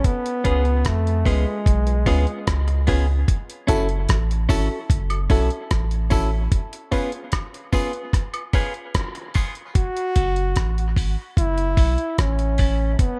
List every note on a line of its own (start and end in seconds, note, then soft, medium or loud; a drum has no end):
0.04 0.89 B3 loud
0.04 kick loud
0.04 closed hi-hat medium
0.26 closed hi-hat medium
0.44 0.84 C#2 loud
0.44 0.63 B3 medium
0.44 0.63 C#4 loud
0.44 0.63 F4 medium
0.44 0.64 G#4 loud
0.44 0.63 B4 loud
0.44 kick loud
0.44 closed hi-hat medium
0.65 closed hi-hat soft
0.85 1.24 F2 medium
0.85 1.29 A3 loud
0.85 kick medium
0.85 cross-stick loud
0.85 closed hi-hat medium
1.07 closed hi-hat soft
1.25 1.45 C#2 medium
1.25 2.88 G#3 loud
1.25 1.44 B3 medium
1.25 1.43 C#4 medium
1.25 1.44 F4 medium
1.25 1.45 F4 medium
1.25 1.45 G#4 medium
1.25 1.44 B4 medium
1.25 kick loud
1.25 open hi-hat medium
1.46 1.54 F4 soft
1.46 1.54 B4 soft
1.66 2.05 B1 loud
1.66 kick loud
1.66 closed hi-hat medium
1.87 1.95 F4 soft
1.87 1.95 B4 soft
1.87 closed hi-hat soft
2.06 2.26 D2 loud
2.06 2.25 B3 medium
2.06 2.24 C#4 medium
2.06 2.25 F4 medium
2.06 2.25 F4 loud
2.06 2.26 G#4 medium
2.06 2.25 B4 medium
2.06 kick loud
2.06 open hi-hat medium
2.27 closed hi-hat soft
2.47 3.25 C#2 medium
2.47 kick loud
2.47 cross-stick loud
2.47 closed hi-hat medium
2.68 muted clean electric guitar stroke soft
2.68 closed hi-hat soft
2.87 3.06 B3 medium
2.87 3.05 C#4 medium
2.87 3.06 F4 medium
2.87 3.07 G#4 medium
2.87 3.06 B4 medium
2.87 kick loud
2.87 open hi-hat medium
3.28 kick loud
3.28 closed hi-hat medium
3.50 closed hi-hat medium
3.67 4.07 F#1 loud
3.67 3.86 C#4 medium
3.67 3.87 E4 medium
3.67 3.86 E4 loud
3.67 3.87 F#4 medium
3.67 3.87 A4 medium
3.67 3.87 A4 loud
3.67 kick medium
3.67 closed hi-hat medium
3.67 tambourine soft
3.89 closed hi-hat soft
4.09 4.48 A1 medium
4.09 kick medium
4.09 cross-stick loud
4.09 closed hi-hat loud
4.31 closed hi-hat soft
4.49 4.69 G#1 medium
4.49 4.68 C#4 medium
4.49 4.67 E4 medium
4.49 4.68 E4 medium
4.49 4.67 F#4 medium
4.49 4.68 A4 medium
4.49 kick loud
4.49 open hi-hat medium
4.49 tambourine medium
4.70 4.78 F#4 soft
4.70 4.78 A4 soft
4.90 5.28 F#1 loud
4.90 kick loud
4.90 closed hi-hat loud
5.10 5.18 F#4 soft
5.10 5.18 A4 soft
5.10 closed hi-hat medium
5.10 high woodblock medium
5.30 5.50 B1 medium
5.30 5.48 C#4 medium
5.30 5.48 E4 medium
5.30 5.49 E4 medium
5.30 5.48 F#4 medium
5.30 5.49 A4 medium
5.30 kick loud
5.30 open hi-hat medium
5.30 tambourine soft
5.50 closed hi-hat soft
5.71 6.48 A1 medium
5.71 kick loud
5.71 cross-stick loud
5.71 closed hi-hat medium
5.91 closed hi-hat soft
6.10 6.29 C#4 medium
6.10 6.29 E4 medium
6.10 6.30 E4 medium
6.10 6.29 F#4 medium
6.10 6.29 A4 medium
6.10 6.30 A4 loud
6.10 kick loud
6.10 open hi-hat medium
6.10 tambourine medium
6.52 kick loud
6.52 closed hi-hat medium
6.73 closed hi-hat medium
6.91 7.10 B3 medium
6.91 7.10 C#4 loud
6.91 7.10 F4 medium
6.91 7.11 F4 medium
6.91 7.11 G#4 medium
6.91 7.10 B4 loud
6.91 kick medium
6.91 open hi-hat medium
6.91 tambourine soft
7.12 closed hi-hat soft
7.32 kick loud
7.32 cross-stick loud
7.32 closed hi-hat medium
7.32 high woodblock medium
7.54 closed hi-hat soft
7.72 7.91 B3 medium
7.72 7.91 C#4 medium
7.72 7.91 F4 medium
7.72 7.92 F4 medium
7.72 7.92 G#4 medium
7.72 7.91 B4 medium
7.72 kick loud
7.72 open hi-hat medium
7.72 tambourine medium
7.93 8.01 F4 soft
7.93 8.01 B4 soft
7.93 closed hi-hat soft
8.13 kick loud
8.13 cross-stick medium
8.13 closed hi-hat medium
8.34 8.42 F4 soft
8.34 8.42 B4 soft
8.34 closed hi-hat medium
8.34 high woodblock medium
8.53 8.72 B3 medium
8.53 8.72 C#4 medium
8.53 8.72 F4 medium
8.53 8.73 F4 loud
8.53 8.73 G#4 loud
8.53 8.72 B4 loud
8.53 kick loud
8.53 open hi-hat medium
8.53 tambourine soft
8.74 closed hi-hat soft
8.95 kick loud
8.95 cross-stick loud
8.95 closed hi-hat medium
9.15 muted clean electric guitar stroke soft
9.15 closed hi-hat soft
9.34 9.53 B3 medium
9.34 9.53 C#4 medium
9.34 9.53 F4 medium
9.34 9.54 F4 medium
9.34 9.54 G#4 medium
9.34 9.53 B4 medium
9.34 kick loud
9.34 open hi-hat medium
9.34 tambourine medium
9.55 closed hi-hat soft
9.75 10.93 F#4 loud
9.75 kick loud
9.75 closed hi-hat medium
9.97 closed hi-hat medium
10.15 10.55 F#1 loud
10.15 10.34 C#4 medium
10.15 10.34 E4 medium
10.15 10.35 E4 medium
10.15 10.34 F#4 medium
10.15 10.34 A4 loud
10.15 10.35 A4 medium
10.15 kick medium
10.15 closed hi-hat medium
10.36 closed hi-hat soft
10.56 10.95 A1 loud
10.56 kick loud
10.56 cross-stick loud
10.56 closed hi-hat medium
10.78 closed hi-hat soft
10.96 11.16 G#1 medium
10.96 11.15 C#4 medium
10.96 11.16 E4 medium
10.96 11.16 A4 medium
10.96 kick loud
10.96 open hi-hat medium
11.17 11.25 F#4 soft
11.17 11.25 A4 soft
11.37 11.76 F#1 loud
11.37 12.15 E4 loud
11.37 kick loud
11.37 closed hi-hat medium
11.58 closed hi-hat soft
11.77 11.97 B1 loud
11.77 11.96 C#4 medium
11.77 11.95 E4 medium
11.77 11.96 E4 medium
11.77 11.96 F#4 medium
11.77 11.96 A4 medium
11.77 11.97 A4 loud
11.77 kick loud
11.77 open hi-hat medium
11.98 closed hi-hat soft
12.18 12.96 A1 medium
12.18 12.96 C#4 medium
12.18 kick loud
12.18 cross-stick loud
12.18 closed hi-hat medium
12.39 closed hi-hat soft
12.58 12.77 C#4 medium
12.58 12.76 E4 medium
12.58 12.78 E4 medium
12.58 12.76 F#4 medium
12.58 12.77 A4 medium
12.58 12.78 A4 medium
12.58 kick medium
12.58 open hi-hat medium
12.99 13.20 B3 loud
12.99 kick loud
12.99 closed hi-hat medium